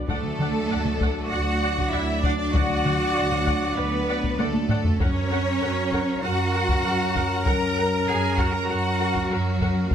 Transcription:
0.08 D2 F#3 A3 D4 A4 D5 F#5, taiko
0.23 taiko mid
0.39 D5 F#5, taiko mid
0.70 D2 D5 F#5
0.85 taiko mid
1.01 D5 F#5, taiko
1.30 D2 F#4 D5 F#5
1.63 D5 F#5
1.78 taiko
1.92 D2 E4 D5 E5 F#5
2.23 D4 D5 F#5, taiko
2.38 D4 D5
2.54 D2 F#4 D5 F#5, taiko
2.70 taiko mid
2.85 D5 F#5, taiko mid
3.16 D2 D5 F#5
3.32 taiko mid
3.46 D5 F#5, taiko
3.77 D2 B3 B4 D5 F#5
4.08 D5 F#5
4.24 taiko
4.38 D2 A3 A4 D5 F#5, taiko high
4.54 taiko high
4.69 D5 F#5, taiko low-mid
4.84 taiko low
5.00 F#2 F#3 C#4 A#4 C#5 F#5, taiko
5.31 A#4 F#5
5.62 F#2 A#4 F#5
5.92 A#4 F#5, taiko
6.22 F#2 F#4 A#4 F#5
6.54 A#4 F#5
6.69 taiko
6.84 F#2 A#4 F#5
7.15 A#4 F#5, taiko
7.45 F#2 A#4 F#5 A#5, taiko
7.77 A#4 F#5
8.07 F#2 G#4 A#4 F#5 G#5
8.37 F#4 A#4 F#5, taiko
8.53 A#4 A#5
8.68 F#2 F#4 A#4 F#5
9.00 A#4 F#5
9.15 taiko
9.30 F#2 F#3 F#4 A#4 F#5
9.61 A#4 F#5, taiko
9.91 F#3 A#3 D#4 A#4, taiko

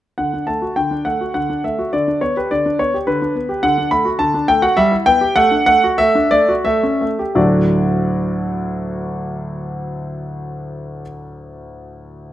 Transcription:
0.18 D3 F#5
0.34 D4
0.47 A3 A5
0.62 F#4
0.76 D3 G5
0.91 D4
1.05 A3 F#5
1.21 F#4
1.34 D3 F#5
1.50 D4
1.64 A3 E5
1.79 F#4
1.93 D3 D5
2.08 D4
2.21 B3 C#5
2.37 G4 B4
2.51 D3 D5
2.66 D4
2.79 B3 C#5
2.94 G4
3.07 D3 B4
3.22 D4
3.35 B3
3.49 G4
3.63 D3 F#5
3.78 D4
3.91 A3 B5
4.05 F#4
4.19 D3 A5
4.34 D4
4.48 A3 G5
4.62 F#4 F#5
4.77 G3 E5
4.92 E4
5.06 B3 G5
5.21 G4
5.36 A3 F#5
5.51 D4
5.66 A3 F#5
5.84 F#4
5.98 A3 E5
6.15 D4
6.31 A3 D5
6.48 F#4
6.65 A3 E5
6.83 C#4
7.01 A3
7.19 G4
7.35 D2 A2 F#3 A3 D4 F#4 D5

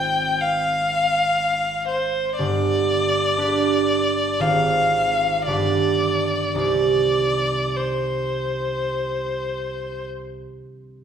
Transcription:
Already playing: G#1 C4 F4 C5 G5
0.41 F5
1.88 C5
2.39 G1 D5
3.38 D4 G4 B4
4.40 G#1 C4 F4 C5 F5
5.47 G1 D4 G4 B4 D5
6.55 C2 D#4 G4 C5
6.60 D5
7.76 C5

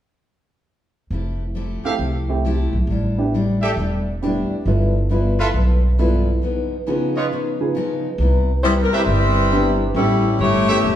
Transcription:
1.10 F1 F3 A3 E4 G4
1.55 F3 A3 E4 G4
1.84 A3 C4 E4 G4 A4 E5 F5, muted upright bass stroke
1.99 C2 F3 A3 E4 G4
2.29 A3 C4 E4 G4
2.45 F3 A3 E4 G4
2.73 B1
2.87 A1 A2 G3 D4
2.92 E4
3.18 B3 D4 E4 G4
3.34 A2 G3 D4 E4
3.62 G4 A4 D5 E5
3.77 E1 A2 G3 D4 E4
4.22 A2 G3 B3 D4 E4 G4
4.50 muted upright bass stroke
4.66 G1 G2 F3 B3 E4 F4 A4
5.10 G2 F3 B3 E4 F4 B4
5.39 F4 A4 B4 E5
5.53 B1 G2 F3 B3 E4
5.98 G2 F3 B3 E4 F4 A4
6.42 C#3 F3 B3 D#4
6.87 C#3 F3 B3 D#4 F4 G#4
7.16 F4 B4 C#5 D#5
7.31 C#3 F3 B3 D#4
7.60 C#3 B3 D#4 F4 G#4
7.75 C#3 F3 B3 D#4
8.18 C2 C3 G3 B3 E4
8.63 C3 G3 B3 E4 C5
8.83 A#4
8.91 G3 C4 E4 G4 B4 C5 E5, muted upright bass stroke
9.06 G1 C3 G3 B3
9.11 E4
9.51 C3 G3 B3 D4 E4 G4
9.94 A1 A2 G3 B3 C#4 E4 G4 A4
10.39 G1 A2 G3 A3 C#4 E4 G4 C#5
10.68 B3 C#4 E4 G4 A4 C#5 E5
10.83 E1 A2 G3 C#4 E4

